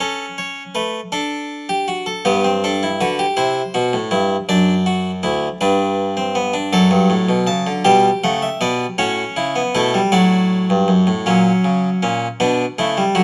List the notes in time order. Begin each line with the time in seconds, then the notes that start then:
0.00 C#4 A4
0.38 C#5
0.75 A3 B4
1.12 D4 A4
1.69 G4
1.88 F#4
2.06 A4
2.25 G2 B3 G4
2.44 C4
2.64 D4 A4
2.83 E4
3.01 D3 F#4 B4
3.19 G4
3.37 C3 E4 C5
3.74 B2 F#4
3.93 A2
4.11 G2 E4
4.49 F#2 D4 D5
4.86 F#4
5.23 D2 E4
5.61 G2 D4 B4
6.17 C4
6.35 B3
6.54 D4
6.73 F#2 F#3 A4 D5
6.91 G2
7.10 A2
7.29 B2
7.47 C#3 A5
7.67 D3
7.85 B2 G3 G4 G5
8.24 C#3 A3 F#5
8.42 E5
8.61 B2 B3 D5
8.98 A2 C#4 F#4 C#5
9.36 C#3 E4
9.56 B3
9.75 B2 A3 E4 A4
9.94 G3
10.12 A2 F#3 F#4 D5
10.70 G2
10.88 F#2
11.07 A2
11.26 A#2 F#3 C#4
11.65 C#3
12.03 A#2 C#4
12.40 B2 B3 D4
12.79 C#3 A3 E4
12.97 G3
13.15 D3 F#3 F#4